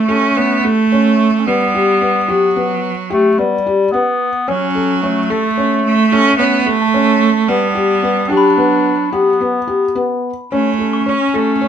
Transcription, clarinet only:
0.00 1.40 A3 medium
1.39 1.48 C#4 medium
1.46 2.84 B3 loud
3.12 3.40 A3 medium
3.39 3.94 G3 medium
3.92 4.50 B3 medium
4.48 5.01 C#4 medium
5.02 7.17 A3 medium
7.47 8.30 B3 medium
8.28 9.11 D4 medium
9.11 10.19 B3 medium
10.51 11.68 C#4 medium

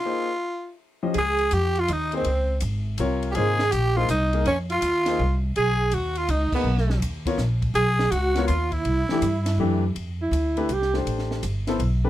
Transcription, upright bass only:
1.15 1.50 C#2 medium
1.52 1.87 F2 medium
1.89 2.24 D#2 loud
2.25 2.61 C#2 medium
2.62 2.97 G#1 medium
2.99 3.34 C2 medium
3.36 3.71 G#1 medium
3.73 4.08 A#1 medium
4.09 4.44 C2 loud
4.46 4.81 F2 medium
4.82 5.17 D#2 medium
5.19 5.55 C2 loud
5.56 5.91 B1 medium
5.92 6.28 D#2 medium
6.29 6.51 C#2 loud
6.52 muted upright bass stroke soft
6.64 6.99 B1 medium
7.00 7.37 D#2 medium
7.38 7.73 A#1 medium
7.74 8.10 B1 medium
8.12 8.48 C#2 loud
8.49 8.84 D#2 loud
8.85 9.08 C2 medium
9.09 muted upright bass stroke soft
9.22 9.57 G2 loud
9.58 9.94 F#2 medium
9.95 10.31 F2 medium
10.31 10.68 D2 medium
10.69 11.05 C2 medium
11.05 11.41 A1 medium
11.43 11.79 G1 medium
11.79 12.10 B1 medium

